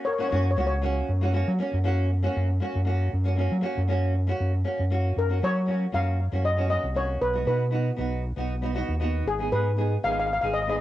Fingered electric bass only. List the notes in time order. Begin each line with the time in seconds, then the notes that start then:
0.32 F#2
0.57 C#2
1.09 F#2
1.48 F#3
1.73 F#2
2.36 F#2
2.75 F#2
3.13 F#2
3.52 F#3
3.77 F#2
4.40 F#2
4.79 F#2
5.17 F#2
5.43 F#3
5.94 F#2
6.33 F#2
6.83 C2
7.21 B1
7.46 B2
7.98 B1
8.37 B1
8.88 D#2
9.25 G#1
9.52 G#2
10.04 G#1
10.43 G#1